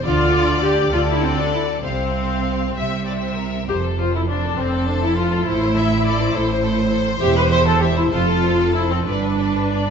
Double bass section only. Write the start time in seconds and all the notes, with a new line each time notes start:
0.05 D2
0.93 D2
1.84 C2
2.75 C2
3.68 F1
4.58 F1
5.46 A1
6.34 A1
7.21 E1
8.11 F1
9.06 G1